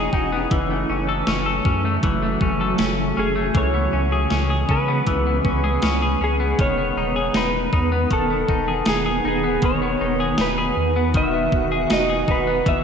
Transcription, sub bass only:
0, 0, Header, 1, 2, 480
1, 0, Start_track
1, 0, Key_signature, 4, "major"
1, 0, Tempo, 759494
1, 324, Time_signature, 4, 2, 24, 8
1, 8113, End_track
2, 0, Start_track
2, 0, Title_t, "Sub bass"
2, 0, Program_c, 0, 38
2, 82, Note_on_c, 0, 28, 91
2, 294, Note_off_c, 0, 28, 0
2, 323, Note_on_c, 0, 30, 107
2, 534, Note_off_c, 0, 30, 0
2, 565, Note_on_c, 0, 30, 95
2, 776, Note_off_c, 0, 30, 0
2, 803, Note_on_c, 0, 30, 87
2, 1015, Note_off_c, 0, 30, 0
2, 1044, Note_on_c, 0, 42, 100
2, 1255, Note_off_c, 0, 42, 0
2, 1282, Note_on_c, 0, 30, 104
2, 1494, Note_off_c, 0, 30, 0
2, 1523, Note_on_c, 0, 30, 84
2, 1734, Note_off_c, 0, 30, 0
2, 1765, Note_on_c, 0, 30, 85
2, 1976, Note_off_c, 0, 30, 0
2, 2006, Note_on_c, 0, 30, 83
2, 2216, Note_off_c, 0, 30, 0
2, 2240, Note_on_c, 0, 37, 91
2, 2453, Note_off_c, 0, 37, 0
2, 2484, Note_on_c, 0, 37, 97
2, 2695, Note_off_c, 0, 37, 0
2, 2726, Note_on_c, 0, 37, 89
2, 2936, Note_off_c, 0, 37, 0
2, 2964, Note_on_c, 0, 49, 88
2, 3175, Note_off_c, 0, 49, 0
2, 3203, Note_on_c, 0, 37, 90
2, 3414, Note_off_c, 0, 37, 0
2, 3442, Note_on_c, 0, 37, 88
2, 3654, Note_off_c, 0, 37, 0
2, 3683, Note_on_c, 0, 37, 80
2, 3894, Note_off_c, 0, 37, 0
2, 3921, Note_on_c, 0, 37, 80
2, 4134, Note_off_c, 0, 37, 0
2, 4162, Note_on_c, 0, 28, 96
2, 4374, Note_off_c, 0, 28, 0
2, 4402, Note_on_c, 0, 28, 89
2, 4614, Note_off_c, 0, 28, 0
2, 4641, Note_on_c, 0, 28, 91
2, 4853, Note_off_c, 0, 28, 0
2, 4884, Note_on_c, 0, 40, 101
2, 5095, Note_off_c, 0, 40, 0
2, 5123, Note_on_c, 0, 28, 101
2, 5335, Note_off_c, 0, 28, 0
2, 5363, Note_on_c, 0, 28, 90
2, 5575, Note_off_c, 0, 28, 0
2, 5606, Note_on_c, 0, 28, 96
2, 5816, Note_off_c, 0, 28, 0
2, 5845, Note_on_c, 0, 28, 87
2, 6055, Note_off_c, 0, 28, 0
2, 6083, Note_on_c, 0, 28, 97
2, 6294, Note_off_c, 0, 28, 0
2, 6326, Note_on_c, 0, 28, 103
2, 6536, Note_off_c, 0, 28, 0
2, 6564, Note_on_c, 0, 28, 85
2, 6775, Note_off_c, 0, 28, 0
2, 6804, Note_on_c, 0, 40, 89
2, 7044, Note_on_c, 0, 28, 101
2, 7053, Note_off_c, 0, 40, 0
2, 7255, Note_off_c, 0, 28, 0
2, 7284, Note_on_c, 0, 28, 98
2, 7495, Note_off_c, 0, 28, 0
2, 7526, Note_on_c, 0, 28, 100
2, 7736, Note_off_c, 0, 28, 0
2, 7760, Note_on_c, 0, 28, 88
2, 7973, Note_off_c, 0, 28, 0
2, 8003, Note_on_c, 0, 30, 95
2, 8113, Note_off_c, 0, 30, 0
2, 8113, End_track
0, 0, End_of_file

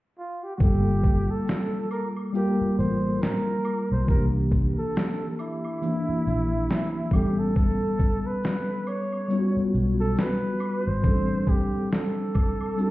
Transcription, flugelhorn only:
0, 0, Header, 1, 2, 480
1, 0, Start_track
1, 0, Tempo, 869565
1, 336, Time_signature, 4, 2, 24, 8
1, 7124, End_track
2, 0, Start_track
2, 0, Title_t, "Flugelhorn"
2, 0, Program_c, 0, 56
2, 101, Note_on_c, 0, 65, 80
2, 240, Note_on_c, 0, 67, 72
2, 248, Note_off_c, 0, 65, 0
2, 306, Note_off_c, 0, 67, 0
2, 309, Note_on_c, 0, 66, 62
2, 341, Note_on_c, 0, 67, 83
2, 349, Note_off_c, 0, 66, 0
2, 720, Note_on_c, 0, 69, 87
2, 729, Note_off_c, 0, 67, 0
2, 1058, Note_off_c, 0, 69, 0
2, 1060, Note_on_c, 0, 70, 80
2, 1148, Note_off_c, 0, 70, 0
2, 1299, Note_on_c, 0, 67, 90
2, 1521, Note_off_c, 0, 67, 0
2, 1537, Note_on_c, 0, 72, 81
2, 1778, Note_on_c, 0, 70, 93
2, 1786, Note_off_c, 0, 72, 0
2, 2157, Note_off_c, 0, 70, 0
2, 2161, Note_on_c, 0, 72, 84
2, 2252, Note_off_c, 0, 72, 0
2, 2261, Note_on_c, 0, 70, 86
2, 2350, Note_off_c, 0, 70, 0
2, 2642, Note_on_c, 0, 69, 92
2, 2957, Note_off_c, 0, 69, 0
2, 2982, Note_on_c, 0, 64, 97
2, 3942, Note_on_c, 0, 67, 80
2, 3950, Note_off_c, 0, 64, 0
2, 4080, Note_on_c, 0, 69, 88
2, 4088, Note_off_c, 0, 67, 0
2, 4176, Note_off_c, 0, 69, 0
2, 4179, Note_on_c, 0, 69, 95
2, 4561, Note_on_c, 0, 71, 94
2, 4570, Note_off_c, 0, 69, 0
2, 4901, Note_on_c, 0, 73, 96
2, 4909, Note_off_c, 0, 71, 0
2, 5354, Note_off_c, 0, 73, 0
2, 5523, Note_on_c, 0, 69, 101
2, 5623, Note_on_c, 0, 71, 101
2, 5632, Note_off_c, 0, 69, 0
2, 6003, Note_on_c, 0, 72, 101
2, 6011, Note_off_c, 0, 71, 0
2, 6344, Note_on_c, 0, 67, 85
2, 6352, Note_off_c, 0, 72, 0
2, 6578, Note_off_c, 0, 67, 0
2, 6581, Note_on_c, 0, 69, 94
2, 7124, Note_off_c, 0, 69, 0
2, 7124, End_track
0, 0, End_of_file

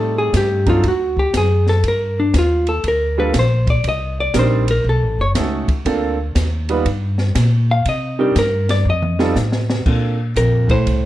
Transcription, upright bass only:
0, 0, Header, 1, 3, 480
1, 0, Start_track
1, 0, Key_signature, -2, "major"
1, 0, Tempo, 501253
1, 1764, Time_signature, 4, 2, 24, 8
1, 10586, End_track
2, 0, Start_track
2, 0, Title_t, "Upright bass"
2, 0, Program_c, 0, 32
2, 0, Note_on_c, 0, 45, 83
2, 304, Note_off_c, 0, 45, 0
2, 320, Note_on_c, 0, 43, 95
2, 787, Note_off_c, 0, 43, 0
2, 797, Note_on_c, 0, 38, 91
2, 1266, Note_off_c, 0, 38, 0
2, 1278, Note_on_c, 0, 42, 92
2, 1747, Note_off_c, 0, 42, 0
2, 1756, Note_on_c, 0, 43, 81
2, 2226, Note_off_c, 0, 43, 0
2, 2237, Note_on_c, 0, 39, 95
2, 2707, Note_off_c, 0, 39, 0
2, 2718, Note_on_c, 0, 38, 83
2, 3187, Note_off_c, 0, 38, 0
2, 3194, Note_on_c, 0, 34, 93
2, 3665, Note_off_c, 0, 34, 0
2, 3676, Note_on_c, 0, 36, 84
2, 4146, Note_off_c, 0, 36, 0
2, 4155, Note_on_c, 0, 34, 90
2, 4624, Note_off_c, 0, 34, 0
2, 4638, Note_on_c, 0, 35, 88
2, 4803, Note_off_c, 0, 35, 0
2, 4803, Note_on_c, 0, 33, 60
2, 4960, Note_off_c, 0, 33, 0
2, 4965, Note_on_c, 0, 30, 67
2, 5113, Note_off_c, 0, 30, 0
2, 5124, Note_on_c, 0, 37, 91
2, 5419, Note_off_c, 0, 37, 0
2, 5603, Note_on_c, 0, 38, 89
2, 6068, Note_off_c, 0, 38, 0
2, 6082, Note_on_c, 0, 39, 101
2, 6547, Note_off_c, 0, 39, 0
2, 6564, Note_on_c, 0, 43, 90
2, 7027, Note_off_c, 0, 43, 0
2, 7040, Note_on_c, 0, 46, 93
2, 7505, Note_off_c, 0, 46, 0
2, 7520, Note_on_c, 0, 48, 79
2, 7985, Note_off_c, 0, 48, 0
2, 8001, Note_on_c, 0, 43, 104
2, 8465, Note_off_c, 0, 43, 0
2, 8474, Note_on_c, 0, 41, 86
2, 8941, Note_off_c, 0, 41, 0
2, 8958, Note_on_c, 0, 45, 97
2, 9423, Note_off_c, 0, 45, 0
2, 9440, Note_on_c, 0, 46, 74
2, 9904, Note_off_c, 0, 46, 0
2, 9918, Note_on_c, 0, 34, 94
2, 10384, Note_off_c, 0, 34, 0
2, 10401, Note_on_c, 0, 36, 75
2, 10586, Note_off_c, 0, 36, 0
2, 10586, End_track
3, 0, Start_track
3, 0, Title_t, "Muted upright bass strokes"
3, 5439, Note_on_c, 9, 29, 40
3, 5535, Note_off_c, 9, 29, 0
3, 10586, End_track
0, 0, End_of_file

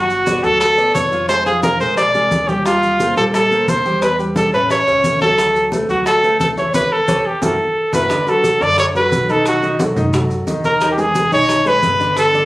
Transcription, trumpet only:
0, 0, Header, 1, 2, 480
1, 0, Start_track
1, 0, Tempo, 340136
1, 1823, Time_signature, 4, 2, 24, 8
1, 17571, End_track
2, 0, Start_track
2, 0, Title_t, "Trumpet"
2, 0, Program_c, 0, 56
2, 0, Note_on_c, 0, 66, 93
2, 621, Note_on_c, 0, 69, 102
2, 643, Note_off_c, 0, 66, 0
2, 843, Note_off_c, 0, 69, 0
2, 852, Note_on_c, 0, 69, 104
2, 1303, Note_off_c, 0, 69, 0
2, 1335, Note_on_c, 0, 73, 87
2, 1786, Note_off_c, 0, 73, 0
2, 1818, Note_on_c, 0, 72, 101
2, 2044, Note_off_c, 0, 72, 0
2, 2064, Note_on_c, 0, 68, 84
2, 2288, Note_off_c, 0, 68, 0
2, 2300, Note_on_c, 0, 70, 87
2, 2526, Note_off_c, 0, 70, 0
2, 2543, Note_on_c, 0, 72, 95
2, 2768, Note_off_c, 0, 72, 0
2, 2784, Note_on_c, 0, 74, 92
2, 3508, Note_on_c, 0, 67, 81
2, 3530, Note_off_c, 0, 74, 0
2, 3742, Note_off_c, 0, 67, 0
2, 3751, Note_on_c, 0, 65, 92
2, 4421, Note_off_c, 0, 65, 0
2, 4481, Note_on_c, 0, 69, 91
2, 4587, Note_off_c, 0, 69, 0
2, 4725, Note_on_c, 0, 69, 91
2, 5203, Note_on_c, 0, 72, 89
2, 5224, Note_off_c, 0, 69, 0
2, 5678, Note_off_c, 0, 72, 0
2, 5684, Note_on_c, 0, 71, 90
2, 5902, Note_off_c, 0, 71, 0
2, 6168, Note_on_c, 0, 69, 80
2, 6385, Note_off_c, 0, 69, 0
2, 6406, Note_on_c, 0, 71, 90
2, 6624, Note_off_c, 0, 71, 0
2, 6652, Note_on_c, 0, 73, 103
2, 7314, Note_off_c, 0, 73, 0
2, 7362, Note_on_c, 0, 69, 88
2, 8029, Note_off_c, 0, 69, 0
2, 8324, Note_on_c, 0, 66, 80
2, 8543, Note_off_c, 0, 66, 0
2, 8566, Note_on_c, 0, 69, 95
2, 9008, Note_off_c, 0, 69, 0
2, 9040, Note_on_c, 0, 69, 82
2, 9147, Note_off_c, 0, 69, 0
2, 9289, Note_on_c, 0, 73, 76
2, 9506, Note_off_c, 0, 73, 0
2, 9524, Note_on_c, 0, 71, 96
2, 9772, Note_on_c, 0, 69, 87
2, 9793, Note_off_c, 0, 71, 0
2, 10247, Note_on_c, 0, 67, 78
2, 10269, Note_off_c, 0, 69, 0
2, 10485, Note_on_c, 0, 69, 80
2, 10506, Note_off_c, 0, 67, 0
2, 11200, Note_off_c, 0, 69, 0
2, 11213, Note_on_c, 0, 71, 87
2, 11697, Note_on_c, 0, 69, 91
2, 11718, Note_off_c, 0, 71, 0
2, 12173, Note_on_c, 0, 74, 113
2, 12194, Note_off_c, 0, 69, 0
2, 12403, Note_off_c, 0, 74, 0
2, 12410, Note_on_c, 0, 73, 100
2, 12514, Note_off_c, 0, 73, 0
2, 12650, Note_on_c, 0, 71, 97
2, 13133, Note_on_c, 0, 69, 86
2, 13154, Note_off_c, 0, 71, 0
2, 13361, Note_off_c, 0, 69, 0
2, 13373, Note_on_c, 0, 66, 86
2, 13808, Note_off_c, 0, 66, 0
2, 15034, Note_on_c, 0, 70, 85
2, 15383, Note_off_c, 0, 70, 0
2, 15408, Note_on_c, 0, 67, 78
2, 15515, Note_on_c, 0, 68, 86
2, 15536, Note_off_c, 0, 67, 0
2, 15983, Note_off_c, 0, 68, 0
2, 15992, Note_on_c, 0, 73, 110
2, 16477, Note_on_c, 0, 71, 101
2, 16498, Note_off_c, 0, 73, 0
2, 17185, Note_off_c, 0, 71, 0
2, 17191, Note_on_c, 0, 69, 94
2, 17571, Note_off_c, 0, 69, 0
2, 17571, End_track
0, 0, End_of_file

